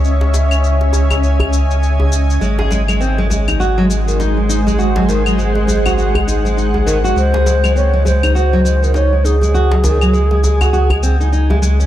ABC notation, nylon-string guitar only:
X:1
M:4/4
L:1/16
Q:"Swing 16ths" 1/4=101
K:none
V:1 name="Nylon-string guitar" clef=bass
z16 | ^G, ^G G, G, ^B, G, G, ^D ^F ^F, G, ^D, D G, D G, | ^F ^F, ^D, F, ^G, G, G, F F G, ^D G, D G, D, F | ^G, ^G G, G, ^B, G, G, ^D ^F ^F, G, ^D, D G, D G, |
^F ^F, ^D, F, ^G, G, G, F F G, ^B, ^D D G, G, ^C |]